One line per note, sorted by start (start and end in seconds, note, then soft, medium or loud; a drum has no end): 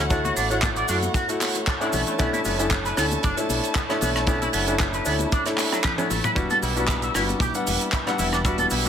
0.00 0.30 D2 medium
0.00 6.33 C#5 medium
0.00 1.89 F#5 medium
0.10 0.47 A3 loud
0.10 0.21 D4 medium
0.10 0.47 E4 medium
0.10 0.47 F#4 loud
0.10 0.47 C#5 medium
0.10 kick loud
0.10 closed hi-hat medium
0.10 tambourine medium
0.10 cabasa medium
0.24 0.31 F#4 loud
0.24 closed hi-hat medium
0.24 high bongo soft
0.24 high conga medium
0.24 cabasa soft
0.36 0.82 A1 loud
0.36 0.47 D4 medium
0.36 open hi-hat medium
0.36 tambourine loud
0.36 cabasa medium
0.50 0.85 A3 medium
0.50 0.57 D4 medium
0.50 0.86 E4 medium
0.50 0.86 F#4 medium
0.50 0.86 C#5 medium
0.50 closed hi-hat medium
0.50 tambourine soft
0.50 cabasa medium
0.62 0.67 D4 medium
0.62 kick loud
0.62 clap loud
0.62 closed hi-hat medium
0.62 tambourine medium
0.62 high bongo medium
0.62 high conga medium
0.62 cabasa medium
0.76 0.86 D5 medium
0.76 closed hi-hat medium
0.76 cabasa soft
0.88 1.07 F#2 medium
0.88 1.25 A3 medium
0.88 0.96 D4 loud
0.88 1.26 E4 medium
0.88 1.26 F#4 medium
0.88 open hi-hat medium
0.88 tambourine medium
0.88 cabasa medium
1.03 closed hi-hat medium
1.03 tambourine soft
1.03 high conga loud
1.03 cabasa soft
1.14 1.25 F#4 medium
1.14 kick loud
1.14 closed hi-hat medium
1.14 tambourine medium
1.14 high bongo soft
1.14 cabasa medium
1.28 1.77 A3 medium
1.28 1.78 E4 medium
1.28 1.78 F#4 loud
1.28 closed hi-hat medium
1.28 cabasa soft
1.41 clap medium
1.41 open hi-hat loud
1.41 tambourine medium
1.41 high conga medium
1.41 cabasa medium
1.55 closed hi-hat medium
1.55 tambourine soft
1.55 high bongo medium
1.55 cabasa soft
1.67 1.71 D4 medium
1.67 kick loud
1.67 clap loud
1.67 closed hi-hat medium
1.67 tambourine medium
1.67 cabasa medium
1.80 2.16 A3 medium
1.80 2.16 C#4 medium
1.80 2.16 D4 medium
1.80 1.87 D4 medium
1.80 2.16 E4 loud
1.80 closed hi-hat medium
1.80 tambourine soft
1.80 cabasa soft
1.92 2.03 B1 medium
1.92 2.00 B3 loud
1.92 8.89 E4 medium
1.92 6.32 A5 medium
1.92 open hi-hat medium
1.92 tambourine medium
1.92 high conga medium
1.92 low conga medium
1.92 cabasa medium
2.07 2.11 A3 medium
2.07 closed hi-hat medium
2.07 tambourine soft
2.07 high bongo soft
2.07 cabasa medium
2.19 2.29 B1 loud
2.19 2.56 A3 loud
2.19 2.30 B3 medium
2.19 2.56 C#4 medium
2.19 2.56 D4 medium
2.19 2.56 E4 loud
2.19 kick loud
2.19 closed hi-hat medium
2.19 tambourine medium
2.19 cabasa medium
2.33 2.39 E4 loud
2.33 closed hi-hat medium
2.33 high conga medium
2.33 cabasa soft
2.45 2.91 F#1 loud
2.45 2.56 B3 medium
2.45 open hi-hat medium
2.45 tambourine loud
2.45 high bongo medium
2.45 cabasa medium
2.59 2.94 A3 medium
2.59 2.65 B3 medium
2.59 2.94 C#4 medium
2.59 2.94 D4 medium
2.59 2.95 E4 medium
2.59 closed hi-hat medium
2.59 tambourine soft
2.59 cabasa medium
2.71 2.75 B3 medium
2.71 kick loud
2.71 clap loud
2.71 closed hi-hat medium
2.71 tambourine medium
2.71 high conga medium
2.71 cabasa medium
2.85 2.94 B4 medium
2.85 closed hi-hat medium
2.85 cabasa soft
2.96 3.15 D2 medium
2.96 3.34 A3 medium
2.96 3.04 B3 loud
2.96 3.34 C#4 medium
2.96 3.34 D4 medium
2.96 3.34 E4 medium
2.96 cross-stick medium
2.96 open hi-hat medium
2.96 tambourine medium
2.96 high bongo medium
2.96 cabasa medium
3.11 closed hi-hat medium
3.11 tambourine soft
3.11 high conga medium
3.11 cabasa soft
3.23 3.33 F#1 medium
3.23 3.34 D4 medium
3.23 kick loud
3.23 closed hi-hat medium
3.23 tambourine soft
3.23 cabasa medium
3.37 3.86 A3 medium
3.37 3.86 D4 medium
3.37 3.86 E4 loud
3.37 3.86 C#5 medium
3.37 closed hi-hat medium
3.37 high bongo medium
3.37 cabasa soft
3.49 3.59 B1 medium
3.49 open hi-hat loud
3.49 tambourine medium
3.49 high conga medium
3.49 cabasa medium
3.63 closed hi-hat medium
3.63 tambourine soft
3.63 cabasa soft
3.75 3.80 B3 medium
3.75 kick loud
3.75 clap loud
3.75 closed hi-hat medium
3.75 tambourine medium
3.75 cabasa medium
3.89 4.24 A3 medium
3.89 3.96 B3 medium
3.89 4.25 D4 medium
3.89 4.25 E4 loud
3.89 4.25 C#5 medium
3.89 cross-stick medium
3.89 closed hi-hat medium
3.89 tambourine soft
3.89 high bongo medium
3.89 cabasa soft
4.01 4.47 B1 medium
4.01 4.09 B3 loud
4.01 open hi-hat medium
4.01 tambourine medium
4.01 high conga loud
4.01 low conga medium
4.01 cabasa medium
4.16 4.19 A3 medium
4.16 cross-stick medium
4.16 closed hi-hat medium
4.16 tambourine soft
4.16 cabasa medium
4.27 4.64 A3 loud
4.27 4.38 B3 medium
4.27 4.64 C#4 medium
4.27 4.64 D4 medium
4.27 4.64 E4 loud
4.27 kick loud
4.27 closed hi-hat medium
4.27 tambourine medium
4.27 high bongo medium
4.27 cabasa medium
4.42 4.48 E4 loud
4.42 closed hi-hat medium
4.42 tambourine soft
4.42 high conga medium
4.42 cabasa soft
4.53 4.99 F#1 loud
4.53 4.64 B3 medium
4.53 open hi-hat loud
4.53 tambourine medium
4.53 cabasa medium
4.67 5.03 A3 medium
4.67 4.74 B3 medium
4.67 5.03 C#4 medium
4.67 5.03 D4 medium
4.67 5.03 E4 medium
4.67 closed hi-hat medium
4.67 tambourine soft
4.67 cabasa medium
4.79 4.84 B3 medium
4.79 kick loud
4.79 clap loud
4.79 closed hi-hat medium
4.79 tambourine medium
4.79 high bongo medium
4.79 high conga medium
4.79 cabasa medium
4.94 5.03 B4 medium
4.94 closed hi-hat medium
4.94 cabasa soft
5.05 5.24 D2 medium
5.05 5.42 A3 medium
5.05 5.13 B3 loud
5.05 5.42 C#4 medium
5.05 5.43 D4 medium
5.05 5.43 E4 medium
5.05 open hi-hat medium
5.05 tambourine loud
5.05 cabasa medium
5.19 closed hi-hat medium
5.19 tambourine soft
5.19 high bongo medium
5.19 high conga medium
5.19 cabasa medium
5.32 5.43 D4 medium
5.32 kick loud
5.32 closed hi-hat medium
5.32 tambourine medium
5.32 cabasa medium
5.45 5.94 A3 medium
5.45 5.95 D4 medium
5.45 5.95 E4 medium
5.45 5.95 C#5 medium
5.45 cross-stick medium
5.45 closed hi-hat medium
5.45 tambourine soft
5.45 cabasa soft
5.57 clap medium
5.57 open hi-hat loud
5.57 tambourine loud
5.57 high conga medium
5.57 cabasa medium
5.71 5.78 F#3 loud
5.71 cross-stick medium
5.71 closed hi-hat medium
5.71 tambourine soft
5.71 high bongo medium
5.71 cabasa soft
5.84 5.92 B4 loud
5.84 kick loud
5.84 clap loud
5.84 closed hi-hat medium
5.84 high tom medium
5.84 tambourine medium
5.84 cabasa medium
5.98 6.06 A3 medium
5.98 6.08 B3 medium
5.98 6.06 C#4 medium
5.98 6.06 D4 medium
5.98 6.07 E4 loud
5.98 closed hi-hat medium
5.98 high tom medium
5.98 tambourine soft
5.98 cabasa soft
6.10 6.20 A1 medium
6.10 6.21 A3 loud
6.10 open hi-hat loud
6.10 tambourine medium
6.10 high bongo medium
6.10 high conga medium
6.10 low conga medium
6.10 cabasa medium
6.24 6.31 B4 loud
6.24 closed hi-hat medium
6.24 mid tom medium
6.24 tambourine soft
6.24 cabasa medium
6.35 6.46 E1 medium
6.35 6.73 G3 loud
6.35 6.73 B3 medium
6.35 6.73 D4 medium
6.35 6.47 E4 medium
6.35 6.73 F#4 loud
6.35 kick loud
6.35 closed hi-hat medium
6.35 tambourine medium
6.35 cabasa medium
6.50 6.57 A4 loud
6.50 closed hi-hat medium
6.50 high conga medium
6.50 cabasa soft
6.62 7.08 B1 loud
6.62 6.73 E4 medium
6.62 open hi-hat loud
6.62 tambourine medium
6.62 cabasa medium
6.76 7.11 G3 medium
6.76 7.12 B3 medium
6.76 7.12 D4 medium
6.76 6.83 E4 medium
6.76 7.12 F#4 medium
6.76 closed hi-hat medium
6.76 tambourine soft
6.76 high bongo soft
6.76 cabasa soft
6.88 6.93 E4 medium
6.88 kick loud
6.88 clap loud
6.88 closed hi-hat medium
6.88 tambourine medium
6.88 high conga medium
6.88 cabasa medium
7.02 7.12 E5 medium
7.02 closed hi-hat medium
7.02 cabasa soft
7.14 7.33 G1 medium
7.14 7.51 G3 medium
7.14 7.51 B3 medium
7.14 7.52 D4 medium
7.14 7.22 E4 loud
7.14 7.52 F#4 medium
7.14 cross-stick medium
7.14 open hi-hat medium
7.14 tambourine loud
7.14 high bongo medium
7.14 cabasa medium
7.29 closed hi-hat medium
7.29 tambourine soft
7.29 high conga loud
7.29 cabasa soft
7.40 7.50 B1 medium
7.40 7.52 G4 medium
7.40 kick loud
7.40 closed hi-hat medium
7.40 tambourine medium
7.40 cabasa medium
7.54 8.03 G3 medium
7.54 8.04 B3 medium
7.54 8.04 D4 medium
7.54 8.04 F#5 medium
7.54 closed hi-hat medium
7.54 cabasa soft
7.67 7.76 E1 medium
7.67 open hi-hat loud
7.67 tambourine medium
7.67 high bongo medium
7.67 high conga medium
7.67 cabasa medium
7.81 closed hi-hat medium
7.81 tambourine soft
7.81 cabasa medium
7.92 7.97 E4 medium
7.92 kick loud
7.92 clap loud
7.92 closed hi-hat medium
7.92 tambourine medium
7.92 cabasa medium
8.06 8.42 G3 medium
8.06 8.42 B3 medium
8.06 8.42 D4 medium
8.06 8.13 E4 medium
8.06 8.42 F#5 loud
8.06 cross-stick medium
8.06 closed hi-hat medium
8.06 tambourine soft
8.06 high bongo medium
8.06 cabasa soft
8.18 8.65 E1 loud
8.18 8.26 E4 loud
8.18 open hi-hat medium
8.18 tambourine loud
8.18 high conga medium
8.18 low conga medium
8.18 cabasa medium
8.32 8.37 D4 medium
8.32 cross-stick medium
8.32 closed hi-hat medium
8.32 tambourine soft
8.32 cabasa soft
8.45 8.82 G3 medium
8.45 8.82 B3 medium
8.45 8.82 D4 medium
8.45 8.56 E4 medium
8.45 8.82 F#4 loud
8.45 kick loud
8.45 closed hi-hat medium
8.45 tambourine medium
8.45 cabasa medium
8.58 8.65 A4 loud
8.58 closed hi-hat medium
8.58 high bongo soft
8.58 high conga loud
8.58 cabasa soft
8.70 8.89 B1 loud
8.70 8.82 E4 medium
8.70 open hi-hat loud
8.70 tambourine medium
8.70 cabasa medium
8.85 8.89 G3 medium
8.85 8.89 B3 medium
8.85 8.89 D4 medium
8.85 8.89 E4 medium
8.85 closed hi-hat medium
8.85 tambourine soft